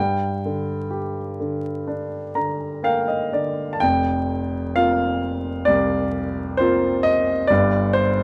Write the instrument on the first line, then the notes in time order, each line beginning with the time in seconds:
grand piano
Already playing: G5
0.00 G2
0.45 D3
0.91 G4
1.40 D3
1.87 D4
2.35 D3 A#5
2.83 A#3 F5 G5
3.08 D#5
3.32 D3 D5
3.73 A5
3.80 F1 F2 G5
4.75 A#3 C4 F4 F5
5.65 C2 D5
6.57 A#3 C4 F4 C5
7.03 D#5
7.47 G1 G2 D5
7.93 C5